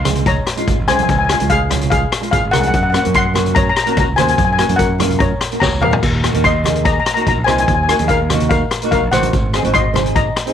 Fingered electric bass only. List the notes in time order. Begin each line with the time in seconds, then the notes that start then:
Already playing: C#2
0.68 G#1
0.79 G#1
0.89 C2
1.09 C#2
1.41 C#2
2.32 G#1
2.45 G#1
2.55 C2
2.74 F#2
3.06 F#2
3.97 C#2
4.08 C#2
4.18 D#2
4.39 F#2
4.69 F#2
5.62 C#2
5.72 C#2
5.82 E2
6.03 D#2
6.35 D#2
7.27 A#1
7.38 A#1
7.47 C2
7.68 D#2
8.00 D#2
8.92 A#1
9.03 A#1
9.13 A1
9.34 G#1
9.65 G#1